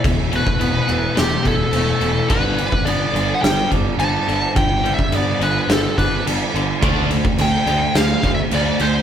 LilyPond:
<<
  \new Staff \with { instrumentName = "Lead electric guitar" } { \time 4/4 \key g \mixolydian \tempo 4 = 106 r8 b'4. g'8 a'4. | b'4 d''8.~ d''32 fis''32 g''8 r8 a''4 | \tuplet 3/2 { g''4 e''8 } d''8 b'8 a'8 b'8 r4 | r4 g''4 \tuplet 3/2 { f''4 e''8 } d''8 c''8 | }
  \new Staff \with { instrumentName = "Distorted electric guitar" } { \time 4/4 \key g \mixolydian r1 | r1 | r1 | <d a d'>8 <d a>8 <d a>8 <d a>8 <d a>8 <d a>8 <d a>8 <d a>8 | }
  \new Staff \with { instrumentName = "Clean electric guitar" } { \clef bass \time 4/4 \key g \mixolydian <e a e'>8 a8 b8 e8 a8 e'8 a8 e8 | g,8 g8 b8 d8 g8 d'8 g8 d8 | g,8 g8 b8 d8 g8 d'8 g8 d8 | r1 | }
  \new Staff \with { instrumentName = "Distorted electric guitar" } { \clef bass \time 4/4 \key g \mixolydian <e, b,>8 <e, b,>8 <e, b,>8 <e, b,>8 <e, b,>8 <e, b,>8 <e, b,>8 <e, b,>8 | <g, d g>8 <g, d>8 <g, d>8 <g, d>8 <g, d>8 <g, d>8 <g, d>8 <g, d>8 | <g, d>8 <g, d>8 <g, d>8 <g, d>8 <g, d>8 <g, d>8 <g, d>8 <g, d>8 | <d a d'>8 <d a>8 <d a>8 <d a>8 <d a>8 <d a>8 <d a>8 <d a>8 | }
  \new Staff \with { instrumentName = "Picked electric bass" } { \clef bass \time 4/4 \key g \mixolydian e,,4 e,,8 e,,8 e,,8 e,,8 e,,8 e,,8 | g,,4 g,,8 g,,8 g,,8 g,,8 g,,8 g,,8 | g,,4 g,,8 g,,8 g,,8 g,,8 g,,8 g,,8 | d,4 d,8 d,8 d,8 d,8 d,8 d,8 | }
  \new DrumStaff \with { instrumentName = "Drums" } \drummode { \time 4/4 <cymc bd>8 cymc16 bd16 cymc8 cymc8 <cymc sn>8 <cymc bd>8 cymc8 cymc8 | <cymc bd>8 cymc16 bd16 cymc8 cymc8 <cymc sn>8 <cymc bd>8 cymc8 cymc8 | <cymc bd>8 cymc16 bd16 cymc8 cymc8 <cymc sn>8 <cymc bd>8 cymc8 cymc8 | <cymc bd>8 cymc16 bd16 cymc8 cymc8 <cymc sn>8 <cymc bd>8 cymc8 cymc8 | }
>>